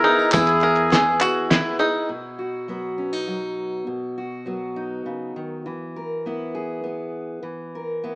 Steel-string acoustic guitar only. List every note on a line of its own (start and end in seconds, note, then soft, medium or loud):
2.09 3.86 B2 soft
2.39 4.16 F#4 soft
2.68 3.26 F#3 soft
2.68 4.46 B3 soft
2.98 3.13 C#4 soft
3.13 3.87 D#4 soft
3.27 3.84 F#3 soft
3.87 5.05 B2 soft
4.18 5.66 F#4 soft
4.46 5.61 F#3 soft
4.46 5.99 B3 soft
4.76 5.62 D#4 soft
5.06 5.36 C#3 soft
5.36 5.66 D#3 soft
5.66 7.41 E3 medium
5.96 6.54 A#4 soft
6.26 6.83 B3 soft
6.26 7.41 E4 soft
6.55 7.40 G#4 medium
6.84 7.78 B3 soft
7.43 8.15 E3 medium
7.75 8.15 A#4 soft
8.04 8.15 B3 soft
8.04 8.15 E4 soft